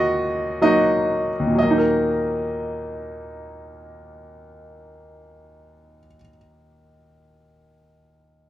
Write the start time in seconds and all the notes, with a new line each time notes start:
Already playing: D#2 D#4 F4 F#4 A#4 C#5 D#5
0.61 F#3 A#3 D#4 F#4 D#5
1.40 D#2
1.47 A#2
1.55 F#3 D#5
1.63 A#3
1.70 D#4
1.78 A#4